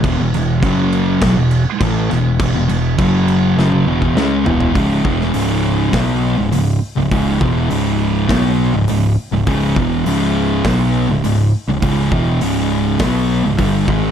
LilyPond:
<<
  \new Staff \with { instrumentName = "Distorted electric guitar" } { \clef bass \time 4/4 \key cis \minor \tempo 4 = 102 <e, b,>16 <e, b,>16 <e, b,>8 <fis, cis fis>4 <b, fis>16 <e, b,>8 r16 <a, e a>8 <e, b,>8 | <e, b,>16 <e, b,>16 <e, b,>8 <fis, cis fis>4 <fis, cis fis>8 <e, b, e>8 <cis gis cis'>8 <e, b, e>8 | <cis, gis, cis>8 <e, b, e>8 <cis, gis, cis>4 <b, fis b>8. <cis, gis,>16 <cis, gis,>8 r16 <cis, gis,>16 | <cis, gis, cis>8 <e, b, e>8 <cis, gis, cis>4 <b, fis b>8. <cis, gis,>16 <cis, gis,>8 r16 <cis, gis,>16 |
<cis, gis, cis>8 <e, b, e>8 <cis, gis, cis>4 <b, fis b>8. <cis, gis,>16 <cis, gis,>8 r16 <cis, gis,>16 | <cis, gis, cis>8 <e, b, e>8 <cis, gis, cis>4 <b, fis b>8. <cis, gis,>16 <g, d g>8 <gis, dis gis>8 | }
  \new Staff \with { instrumentName = "Distorted electric guitar" } { \clef bass \time 4/4 \key cis \minor <e, b,>16 <e, b,>16 <e, b,>8 <fis, cis fis>4 <b, fis>16 <e, b,>8 r16 <a, e a>8 <e, b,>8 | <e, b,>16 <e, b,>16 <e, b,>8 <fis, cis fis>4 <fis, cis fis>8 <e, b, e>8 <cis gis cis'>8 <e, b, e>8 | <cis, gis, cis>8 <e, b, e>8 <cis, gis, cis>4 <b, fis b>8. <cis, gis,>16 <cis, gis,>8 r16 <cis, gis,>16 | <cis, gis, cis>8 <e, b, e>8 <cis, gis, cis>4 <b, fis b>8. <cis, gis,>16 <cis, gis,>8 r16 <cis, gis,>16 |
<cis, gis, cis>8 <e, b, e>8 <cis, gis, cis>4 <b, fis b>8. <cis, gis,>16 <cis, gis,>8 r16 <cis, gis,>16 | <cis, gis, cis>8 <e, b, e>8 <cis, gis, cis>4 <b, fis b>8. <cis, gis,>16 <g, d g>8 <gis, dis gis>8 | }
  \new Staff \with { instrumentName = "Picked electric bass" } { \clef bass \time 4/4 \key cis \minor e,,16 e,,16 e,,8 fis,,4 b,,16 e,,8 r16 a,,8 e,,8 | e,,16 e,,16 e,,8 fis,,4 fis,,8 e,,8 cis,8 e,,8 | cis,,8 e,,8 cis,,4 b,,8. cis,,16 cis,,8 r16 cis,,16 | cis,,8 e,,8 cis,,4 b,,8. cis,,16 cis,,8 r16 cis,,16 |
cis,,8 e,,8 cis,,4 b,,8. cis,,16 cis,,8 r16 cis,,16 | cis,,8 e,,8 cis,,4 b,,8. cis,,16 g,,8 gis,,8 | }
  \new DrumStaff \with { instrumentName = "Drums" } \drummode { \time 4/4 <cymc bd>8 cymc8 <cymc bd>8 cymc8 <cymc bd sn>8 cymc8 <cymc bd>8 <cymc sn>8 | <cymc bd>8 cymc8 <cymc bd>8 cymc8 sn16 tommh8 bd16 sn8 tomfh16 tomfh16 | <hho bd>8 bd16 sn16 hho4 <hho bd sn>4 hho4 | <hho bd>8 bd8 hho4 <hho bd sn>4 hho4 |
<hho bd>8 bd8 hho4 <hho bd sn>4 hho4 | <hho bd>8 bd8 hho4 <hho bd sn>4 <hho bd>8 bd8 | }
>>